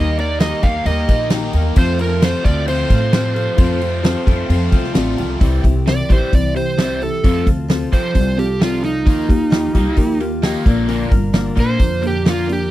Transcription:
Already playing: D#2 D#3 G3 A#3 D#4 G4 A#4 D#5
0.18 A#3 D#4 A#4 D5, crash
0.39 D#3 G3 A#3 D#4 G4 A#4 D#5, snare, crash
0.62 D#2 A#3 D#4 G4 A#4 F5, kick, crash
0.85 D#2 D#3 G3 A#3 D#4 G4 A#4 D#5, crash
0.89 D6
1.08 A#1 A#3 D#4 A#4, kick, crash
1.30 D#3 G3 A#3 D#4 G4 A#4, snare, crash
1.34 D#5
1.53 D#2 A#3 D#4 G4 A#4, crash
1.76 F2 C3 F3 A3 C4 F4 A4 C5, kick, crash
1.99 C4 F4 A4 A#4, crash
2.21 F3 A3 C4 F4 A4 C5, snare, crash
2.44 D2 F3 A3 C4 F4 A4 D5, kick, crash
2.67 F3 A3 C4 F4 A4 C5, crash
2.90 A2 C4 F4 A4, kick, crash
3.11 F2 C3 F3 A3 C4 F4 A4 C5, snare, crash
3.34 F3 A3 C4 F4 A4, crash
3.57 F2 C3 F3 A3 C4 F4 A4 C5, kick, crash
3.80 C4 F4 A4, crash
4.02 F3 A3 C4 F4 A4 C5, snare, crash
4.26 F2 F3 A3 C4 F4 A4, kick, crash
4.48 F2 F3 A3 C4 F4 A4 C5, crash
4.71 C2 C4 F4 A4, kick, crash
4.84 snare
4.94 A1 F2 C3 F3 A3 C4 F4 A4 D5, snare, crash
5.17 C2 F3 A3 C4 F4 A4, crash
5.40 C2 C3 E3 G3 C4 E4 G4 C5, kick, open hi-hat
5.63 C2 C3 E3 C4 E4 G4, kick, open hi-hat
5.85 C3 E3 G3 C4 E4 G4 A#4 D5, snare, open hi-hat
6.09 A1 C3 E3 G3 C4 E4 G4 C5, kick, open hi-hat
6.31 C2 C3 E3 G3 C4 E4 G4 C5 D5, kick, open hi-hat
6.55 C3 E3 C4 E4 G4 C5, open hi-hat
6.77 C3 E3 G3 C4 E4 G4 C5, snare, open hi-hat
7.01 C3 E3 C4 E4 G4 A4, open hi-hat
7.23 F2 C3 F3 C4 F4 A4 C5, kick, open hi-hat
7.46 D2 F2 C3 C4 F4 A4, kick, open hi-hat
7.68 F2 C3 F3 C4 F4 A4 C5, snare, open hi-hat
7.90 F2 C3 F3 C4 F4 A4 C5, kick, open hi-hat
8.14 C2 F2 C3 F3 C4 F4 A4, kick, open hi-hat
8.18 D5
8.37 F2 C3 C4 F4 G4 A4, open hi-hat
8.60 F2 C3 F3 C4 F4 A4 D5, snare, open hi-hat
8.83 F2 C3 C4 D#4 F4 A4, open hi-hat
9.05 D#2 D#3 F3 A#3 D#4 F4 G4 D#5, kick, open hi-hat
9.28 D#2 D#3 A#3 F4 G4, kick, open hi-hat
9.50 D#3 F3 A#3 F4 G4, snare, open hi-hat
9.55 D#5
9.74 C2 D#3 A#3 D#4 F4 G4, kick, open hi-hat
9.95 D#2 D#3 F3 A#3 F4 G4 A#4, kick, open hi-hat
10.19 D#3 A#3 F4 G4, open hi-hat
10.41 D#3 F3 A#3 D#4 F4 G4 D#5, snare, open hi-hat
10.65 A#1 A#2 D3 F3 A#3 D4 F4 A#4 D5, kick, open hi-hat
10.88 A#2 D3 F3 A#3 D4 A#4, open hi-hat
11.10 G1 A#2 D3 F3 A#3 D4 A#4, kick, open hi-hat
11.33 A#2 D3 F3 A#3 D4 F4 A#4 D5, snare, open hi-hat
11.56 A#2 D3 F3 A#3 D4 A#4, kick, open hi-hat
11.60 C5
11.78 F2 A#2 D3 F3 A#3 D4 A#4, kick, open hi-hat
11.82 F4 A#4 C5
12.01 A#2 D3 F3 A#3 D4 A#4, open hi-hat
12.07 G4
12.25 A#2 D3 F3 A#3 D4 F4 A#4 D5, snare, open hi-hat
12.30 F4
12.48 A#2 D3 F3 A#3 D4 A#4, open hi-hat
12.52 G4

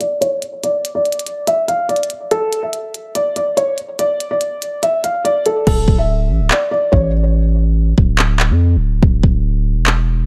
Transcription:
0.00 D5, closed hi-hat
0.21 C#5, closed hi-hat
0.42 closed hi-hat
0.64 D5, closed hi-hat
0.85 closed hi-hat
0.95 D5
1.05 closed hi-hat
1.12 closed hi-hat
1.19 closed hi-hat
1.27 closed hi-hat
1.47 E5, closed hi-hat
1.68 F5, closed hi-hat
1.89 D5, closed hi-hat
1.96 closed hi-hat
2.03 closed hi-hat
2.10 closed hi-hat
2.31 A4, closed hi-hat
2.53 closed hi-hat
2.63 E5
2.73 closed hi-hat
2.94 closed hi-hat
3.15 D5, closed hi-hat
3.36 D5, closed hi-hat
3.57 C#5, closed hi-hat
3.78 closed hi-hat
3.99 D5, closed hi-hat
4.20 closed hi-hat
4.31 D5
4.41 closed hi-hat
4.62 closed hi-hat
4.83 E5, closed hi-hat
5.04 F5, closed hi-hat
5.25 D5, closed hi-hat
5.46 A4, closed hi-hat
5.67 D1 A4, kick, crash
5.88 D1, kick
5.98 E5
6.30 A1
6.40 D1
6.51 D5, clap
6.71 D5
6.92 A1 C#5, kick
7.98 D1, kick
8.19 clap
8.40 clap
8.50 F2
8.76 D1
9.03 D1, kick
9.23 D1, kick
9.76 E1
9.86 clap

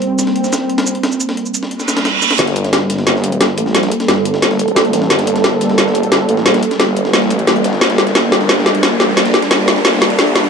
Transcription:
Already playing: G3 A#3 C4
0.02 closed hi-hat
0.19 snare, closed hi-hat, shaker
0.27 snare
0.36 closed hi-hat
0.44 snare, shaker
0.53 snare, closed hi-hat, shaker
0.70 closed hi-hat
0.78 snare, closed hi-hat
0.86 shaker
0.95 closed hi-hat
1.03 snare, closed hi-hat
1.12 shaker
1.20 closed hi-hat, shaker
1.29 snare
1.37 closed hi-hat
1.46 shaker
1.54 closed hi-hat, shaker
1.63 snare
1.71 closed hi-hat, reverse cymbal
1.80 snare, shaker
1.88 snare, closed hi-hat, shaker
1.97 snare, closed hi-hat
2.05 snare, closed hi-hat
2.22 snare, closed hi-hat, shaker
2.31 snare, closed hi-hat
2.39 G1 G3 A#3 A4, snare, closed hi-hat, riser
2.47 snare, closed hi-hat
2.56 closed hi-hat
2.64 snare, closed hi-hat
2.73 G1, snare, closed hi-hat
2.90 snare, closed hi-hat
2.98 snare
3.07 G1, snare, closed hi-hat
3.15 snare
3.24 closed hi-hat
3.32 closed hi-hat
3.41 G1, snare, closed hi-hat
3.58 A1, closed hi-hat
3.66 snare
3.75 A#1, snare, closed hi-hat
3.83 snare, closed hi-hat
3.92 closed hi-hat
4.00 snare, closed hi-hat
4.08 G1, snare, closed hi-hat
4.25 closed hi-hat
4.34 snare
4.42 G1, snare, closed hi-hat
4.51 snare
4.59 closed hi-hat
4.68 closed hi-hat
4.76 D2, snare, closed hi-hat
4.85 closed hi-hat
4.93 A1, snare, closed hi-hat
5.02 snare
5.10 G1, snare, closed hi-hat
5.19 snare, closed hi-hat
5.27 closed hi-hat
5.36 snare, closed hi-hat
5.44 G1, snare, closed hi-hat
5.61 snare, closed hi-hat
5.70 snare
5.78 G1, snare, closed hi-hat
5.86 snare
5.95 closed hi-hat
6.03 closed hi-hat
6.12 G1, snare, closed hi-hat
6.29 A1, closed hi-hat
6.37 snare
6.46 A#1, snare, closed hi-hat
6.54 snare, closed hi-hat
6.63 closed hi-hat
6.71 snare, closed hi-hat
6.80 G1, snare, closed hi-hat
6.97 closed hi-hat
7.05 snare
7.13 A1, snare, closed hi-hat
7.22 snare
7.30 closed hi-hat
7.39 closed hi-hat
7.47 snare, closed hi-hat
7.56 closed hi-hat
7.64 G1, snare, closed hi-hat
7.73 snare
7.81 G1 D4, snare, closed hi-hat
7.90 snare, closed hi-hat
7.98 snare, closed hi-hat
8.07 snare, closed hi-hat
8.15 G1, snare, closed hi-hat
8.32 snare, closed hi-hat
8.41 snare
8.49 G1, snare, closed hi-hat
8.58 snare
8.66 snare, closed hi-hat
8.75 closed hi-hat
8.83 G1, snare, closed hi-hat
9.00 A1, snare, closed hi-hat
9.09 snare
9.17 A#1, snare, closed hi-hat
9.25 snare, closed hi-hat
9.34 snare, closed hi-hat
9.42 snare, closed hi-hat
9.51 G1, snare, closed hi-hat
9.68 snare, closed hi-hat
9.76 snare
9.85 G1, snare, closed hi-hat
9.93 snare
10.02 snare, closed hi-hat
10.10 closed hi-hat
10.19 D2, snare, closed hi-hat
10.27 closed hi-hat
10.36 A1, snare, closed hi-hat
10.44 snare

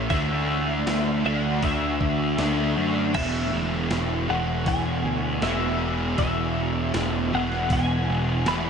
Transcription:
Already playing: E3
0.09 D2 D3 A3 D4 E5, kick, open hi-hat
0.87 D2, snare, open hi-hat
1.24 D2 D3 A3 D4 F#5
1.63 D2 E5, kick, open hi-hat
2.01 D2, kick
2.38 D2 D3 A3 D4, snare, open hi-hat
2.77 F#2
3.14 E1 E2 B2 E3 E5, kick, crash
3.53 E1
3.91 E1, snare, open hi-hat
4.29 E1 E2 B2 E3 F#5
4.66 E1 G#5, kick, open hi-hat
5.05 D2
5.42 E1 E2 B2 E3 E5, snare, open hi-hat
6.17 E1 E2 B2 E3 E5, kick, open hi-hat
6.94 E1, snare, open hi-hat
7.32 E1 E2 B2 E3 F#5
7.52 snare
7.70 E1 G#5, kick, open hi-hat
8.09 E1
8.46 E1 E2 B2 E3 B5, snare, open hi-hat

